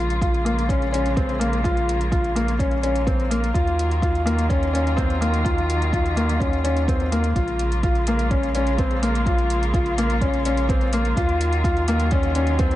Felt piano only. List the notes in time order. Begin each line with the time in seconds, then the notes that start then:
0.22 F4
0.45 A#3
0.69 C#4
0.92 C#4
1.16 C4
1.40 A#3
1.64 F4
2.12 F4
2.36 A#3
2.59 C#4
2.83 C#4
3.07 C4
3.31 A#3
3.54 F4
4.02 F4
4.26 A#3
4.50 C#4
4.73 C#4
4.97 C4
5.21 A#3
5.45 F4
5.93 F4
6.17 A#3
6.40 C#4
6.64 C#4
6.88 C4
7.12 A#3
7.36 F4
7.83 F4
8.08 A#3
8.31 C#4
8.55 C#4
8.79 C4
9.03 A#3
9.27 F4
9.75 F4
9.98 A#3
10.22 C#4
10.46 C#4
10.69 C4
10.93 A#3
11.17 F4
11.64 F4
11.88 A#3
12.12 C#4
12.36 C#4
12.59 C4